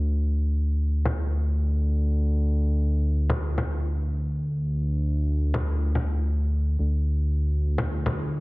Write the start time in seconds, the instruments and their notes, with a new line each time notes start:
Already playing: analog synth bass D2
1.05 low conga
3.30 low conga
3.58 low conga
5.54 low conga
5.95 low conga
6.79 analog synth bass D2
7.78 low conga
8.06 low conga